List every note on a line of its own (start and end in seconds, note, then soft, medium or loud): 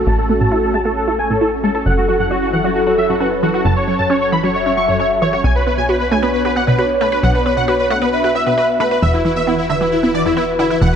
0.00 1.82 A3 medium
0.00 5.40 C#4 medium
0.00 0.20 F#4 medium
0.00 1.82 F#4 medium
0.07 1.84 A1 medium
0.07 0.13 A3 medium
0.07 0.14 A5 medium
0.18 0.25 A4 medium
0.29 0.33 A3 medium
0.29 0.88 F#4 loud
0.29 0.36 A4 medium
0.40 0.46 A2 medium
0.40 0.47 A5 medium
0.52 0.58 E4 medium
0.52 0.59 A4 medium
0.63 0.70 A4 medium
0.74 0.78 G#3 medium
0.74 0.81 A5 medium
0.85 0.91 A3 medium
0.85 0.92 A4 medium
0.97 1.03 A4 medium
0.97 1.77 A4 loud
1.08 1.14 E4 medium
1.08 1.15 A4 medium
1.19 1.22 A3 medium
1.19 1.26 G#5 medium
1.30 1.36 A2 medium
1.30 1.37 A4 medium
1.41 1.47 E4 medium
1.41 1.48 A4 medium
1.64 1.67 G#3 medium
1.64 1.71 A4 medium
1.75 1.81 A4 medium
1.75 1.82 A4 medium
1.86 3.63 F#1 medium
1.86 1.92 F#3 medium
1.86 5.41 F#3 medium
1.86 3.63 E4 medium
1.86 5.41 A4 medium
1.86 2.44 A4 loud
1.86 1.93 F#5 medium
1.97 2.04 F#4 medium
2.08 2.12 F#3 medium
2.08 2.15 F#4 medium
2.19 2.25 F#2 medium
2.19 2.27 F#5 medium
2.31 2.37 C#4 medium
2.31 2.38 F#4 medium
2.42 2.49 F#4 medium
2.53 2.57 E3 medium
2.53 3.11 A4 medium
2.53 2.60 F#5 medium
2.64 2.70 F#3 loud
2.64 2.71 F#4 medium
2.76 2.83 F#4 medium
2.87 2.93 C#4 medium
2.87 2.94 F#4 medium
2.98 3.01 F#3 medium
2.98 3.05 E5 medium
3.09 3.15 F#2 medium
3.09 3.16 F#4 medium
3.20 3.26 C#4 medium
3.20 3.27 F#4 medium
3.20 3.79 B4 medium
3.43 3.46 E3 medium
3.43 3.50 F#4 medium
3.54 3.61 F#4 medium
3.54 3.60 F#4 medium
3.65 5.42 F#1 medium
3.65 3.71 F#3 medium
3.65 5.42 F#4 medium
3.65 3.72 A5 medium
3.76 3.83 C#5 medium
3.87 3.91 F#3 medium
3.87 3.94 C#5 medium
3.87 4.46 C#5 medium
3.99 4.05 F#2 medium
3.99 4.06 A5 medium
4.10 4.16 C#4 medium
4.10 4.17 C#5 medium
4.21 4.28 C#5 medium
4.32 4.36 E3 loud
4.32 4.39 B5 medium
4.43 4.49 F#3 medium
4.43 4.50 C#5 medium
4.55 4.62 C#5 medium
4.55 5.35 E5 loud
4.66 4.72 C#4 medium
4.66 4.73 C#5 medium
4.77 4.81 F#3 medium
4.77 4.84 C#6 medium
4.88 4.94 F#2 medium
4.88 4.95 C#5 medium
4.99 5.05 C#4 medium
4.99 5.06 C#5 medium
5.22 5.25 E3 medium
5.22 5.29 C#5 medium
5.33 5.39 F#4 medium
5.33 5.40 C#5 medium
5.44 7.21 B1 medium
5.44 5.50 B3 medium
5.44 8.99 B3 medium
5.44 8.99 D4 medium
5.44 10.96 F#4 medium
5.44 6.02 C#5 loud
5.44 5.51 G#5 medium
5.55 5.62 B4 medium
5.67 5.70 B3 medium
5.67 5.74 B4 medium
5.78 5.84 B2 medium
5.78 5.85 G#5 medium
5.89 5.95 F#4 medium
5.89 5.96 B4 medium
6.00 6.07 B4 medium
6.11 6.15 A3 medium
6.11 6.70 C#5 medium
6.11 6.18 G#5 medium
6.22 6.28 B3 loud
6.22 6.29 B4 medium
6.34 6.41 B4 medium
6.45 6.51 F#4 medium
6.45 6.52 B4 medium
6.56 6.60 B3 medium
6.56 6.63 F#5 medium
6.67 6.73 B2 loud
6.67 6.74 B4 medium
6.78 6.84 F#4 medium
6.78 6.85 B4 medium
6.78 7.37 C#5 medium
7.01 7.04 A3 medium
7.01 7.08 B4 medium
7.12 7.19 B4 medium
7.12 7.18 B4 medium
7.23 9.00 B1 medium
7.23 7.29 B3 medium
7.23 7.30 F#5 medium
7.34 7.41 B4 medium
7.46 7.49 B3 medium
7.46 7.53 B4 medium
7.46 8.04 C#5 medium
7.57 7.63 B2 medium
7.57 7.64 F#5 medium
7.68 7.74 F#4 medium
7.68 7.75 B4 medium
7.79 7.86 B4 medium
7.90 7.94 A3 medium
7.90 7.97 F#5 medium
8.02 8.08 B3 loud
8.02 8.09 B4 medium
8.13 8.20 B4 medium
8.13 8.94 E5 loud
8.24 8.30 F#4 medium
8.24 8.31 B4 medium
8.35 8.39 B3 medium
8.35 8.42 E5 medium
8.46 8.52 B2 loud
8.46 8.53 B4 medium
8.58 8.64 F#4 medium
8.58 8.65 B4 medium
8.80 8.84 A3 loud
8.80 8.87 B4 medium
8.91 8.98 B4 medium
8.91 8.97 B4 medium
9.02 10.79 E1 medium
9.02 9.08 E3 medium
9.02 10.96 E3 medium
9.02 10.96 E4 medium
9.02 10.96 B4 medium
9.02 9.61 B4 loud
9.02 9.09 E5 medium
9.14 9.21 E4 medium
9.25 9.28 E3 medium
9.25 9.32 E4 medium
9.36 9.42 E2 medium
9.36 9.43 E5 medium
9.47 9.53 B3 medium
9.47 9.54 E4 medium
9.58 9.65 E4 medium
9.70 9.73 D3 loud
9.70 10.28 B4 medium
9.70 9.77 E5 medium
9.81 9.87 E3 medium
9.81 9.88 E4 medium
9.92 9.99 E4 medium
10.03 10.09 B3 medium
10.03 10.10 E4 medium
10.14 10.18 E3 medium
10.14 10.21 D5 medium
10.25 10.31 E2 medium
10.25 10.32 E4 medium
10.37 10.43 B3 medium
10.37 10.44 E4 medium
10.37 10.95 B4 loud
10.59 10.63 D3 medium
10.59 10.66 E4 medium
10.70 10.77 E4 medium
10.70 10.76 E4 medium
10.81 10.96 E1 medium
10.81 10.87 E3 medium
10.81 10.88 F#5 medium